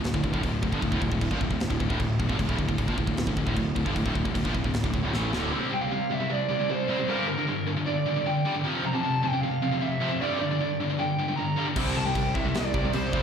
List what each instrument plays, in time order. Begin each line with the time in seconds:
Already playing: picked electric bass D1, distorted electric guitar D2 A2
0.04 snare, china
0.14 picked electric bass D1, distorted electric guitar D2 A2, kick
0.23 picked electric bass D1, distorted electric guitar D2 A2, kick
0.33 picked electric bass D1, distorted electric guitar D2 A2, kick
0.43 picked electric bass D1, distorted electric guitar D2 A2, kick, china
0.62 picked electric bass D1, distorted electric guitar D2 A2, kick
0.72 picked electric bass G1, distorted electric guitar G2 D3, kick
0.82 picked electric bass D1, distorted electric guitar D2 A2, kick, china
0.92 picked electric bass D1, distorted electric guitar D2 A2, kick
1.02 picked electric bass D1, distorted electric guitar D2 A2, kick
1.12 picked electric bass D1, distorted electric guitar D2 A2, kick
1.21 picked electric bass D1, distorted electric guitar D2 A2, kick, china
1.31 picked electric bass A#1, distorted electric guitar A#2 F3, kick
1.40 picked electric bass D1, distorted electric guitar D2 A2, kick
1.50 picked electric bass D1, distorted electric guitar D2 A2, kick
1.60 snare, china
1.70 picked electric bass D1, distorted electric guitar D2 A2, kick
1.80 picked electric bass D1, distorted electric guitar D2 A2, kick
1.88 picked electric bass D1, distorted electric guitar D2 A2, kick
1.99 picked electric bass D1, distorted electric guitar D2 A2, kick, china
2.19 picked electric bass D1, distorted electric guitar D2 A2, kick
2.29 picked electric bass G1, distorted electric guitar G2 D3, kick
2.39 picked electric bass D1, distorted electric guitar D2 A2, kick, china
2.48 picked electric bass D1, distorted electric guitar D2 A2, kick
2.58 picked electric bass D1, distorted electric guitar D2 A2, kick
2.69 picked electric bass D1, distorted electric guitar D2 A2, kick
2.78 picked electric bass D1, distorted electric guitar D2 A2, kick, china
2.87 picked electric bass A#1, distorted electric guitar A#2 F3, kick
2.97 picked electric bass D1, distorted electric guitar D2 A2, kick
3.07 picked electric bass D1, distorted electric guitar D2 A2, kick
3.17 snare, china
3.27 picked electric bass D1, distorted electric guitar D2 A2, kick
3.37 picked electric bass D1, distorted electric guitar D2 A2, kick
3.47 picked electric bass D1, distorted electric guitar D2 A2, kick
3.56 picked electric bass D1, distorted electric guitar D2 A2, kick, china
3.76 picked electric bass D1, distorted electric guitar D2 A2, kick
3.85 picked electric bass G1, distorted electric guitar G2 D3, kick
3.95 picked electric bass D1, distorted electric guitar D2 A2, kick, china
4.06 picked electric bass D1, distorted electric guitar D2 A2, kick
4.15 picked electric bass D1, distorted electric guitar D2 A2, kick
4.25 picked electric bass D1, distorted electric guitar D2 A2, kick
4.34 picked electric bass D1, distorted electric guitar D2 A2, kick, china
4.45 picked electric bass A#1, distorted electric guitar A#2 F3, kick
4.54 picked electric bass D1, distorted electric guitar D2 A2, kick
4.64 picked electric bass D1, distorted electric guitar D2 A2, kick
4.74 snare, china
4.84 picked electric bass D1, distorted electric guitar D2 A2, kick
4.94 picked electric bass D1, distorted electric guitar D2 A2, kick
5.03 picked electric bass D1, distorted electric guitar D2 A2
5.13 picked electric bass A1, distorted electric guitar A2 E3 A3, snare
5.32 picked electric bass D1, distorted electric guitar D2 A2 D3, snare
5.52 distorted electric guitar C3 G3 C4
5.71 distorted electric guitar C3 G3, lead electric guitar G5
5.81 distorted electric guitar C3 G3, lead electric guitar F5
5.92 distorted electric guitar C3 G3
6.11 distorted electric guitar C3 G3, lead electric guitar E5
6.20 distorted electric guitar C3 G3
6.29 distorted electric guitar C3 G3, lead electric guitar D5
6.49 distorted electric guitar C3 G3
6.59 distorted electric guitar C3 G3
6.69 distorted electric guitar C3 G3, lead electric guitar C5
6.88 distorted electric guitar C3 G3 C4
6.99 distorted electric guitar C3 G3
7.08 distorted electric guitar G2 D3 G3, lead electric guitar A#4
7.28 distorted electric guitar G2 D3, lead electric guitar A#4
7.38 distorted electric guitar G2 D3
7.47 distorted electric guitar G2 D3
7.67 distorted electric guitar G2 D3
7.77 distorted electric guitar G2 D3
7.86 distorted electric guitar G2 D3, lead electric guitar D5
8.06 distorted electric guitar G2 D3
8.16 distorted electric guitar G2 D3
8.26 distorted electric guitar G2 D3, lead electric guitar G5
8.45 distorted electric guitar G2 D3 G3
8.54 distorted electric guitar G2 D3
8.64 distorted electric guitar F2 C3 F3
8.84 distorted electric guitar F2 C3, lead electric guitar A#5
8.93 distorted electric guitar F2 C3, lead electric guitar A5
9.03 distorted electric guitar F2 C3
9.22 distorted electric guitar F2 C3, lead electric guitar G5
9.33 distorted electric guitar F2 C3
9.42 distorted electric guitar F2 C3, lead electric guitar F5
9.62 distorted electric guitar F2 C3
9.71 distorted electric guitar F2 C3
9.81 distorted electric guitar F2 C3, lead electric guitar E5
10.00 distorted electric guitar F2 C3 F3
10.11 distorted electric guitar F2 C3
10.20 distorted electric guitar G2 D3 G3, lead electric guitar D5
10.39 distorted electric guitar G2 D3, lead electric guitar D5
10.51 distorted electric guitar G2 D3
10.61 distorted electric guitar G2 D3
10.80 distorted electric guitar G2 D3
10.90 distorted electric guitar G2 D3
10.99 distorted electric guitar G2 D3, lead electric guitar G5
11.19 distorted electric guitar G2 D3
11.28 distorted electric guitar G2 D3
11.36 distorted electric guitar G2 D3, lead electric guitar A#5
11.56 distorted electric guitar G2 D3 G3
11.66 distorted electric guitar G2 D3
11.76 picked electric bass C2, distorted electric guitar C3 G3 C4, kick, crash, china
11.96 picked electric bass C2, distorted electric guitar C3 G3, lead electric guitar A5
12.06 distorted electric guitar C3 G3, lead electric guitar G5
12.15 picked electric bass C2, distorted electric guitar C3 G3, kick, china
12.34 picked electric bass C2, distorted electric guitar C3 G3, lead electric guitar E5, kick
12.44 distorted electric guitar C3 G3
12.52 picked electric bass C2, distorted electric guitar C3 G3, lead electric guitar D5, snare, china
12.74 picked electric bass C2, distorted electric guitar C3 G3, kick
12.85 distorted electric guitar C3 G3
12.92 picked electric bass C2, distorted electric guitar C3 G3, lead electric guitar C5, china
13.13 picked electric bass F1, distorted electric guitar C3 G3 C4, kick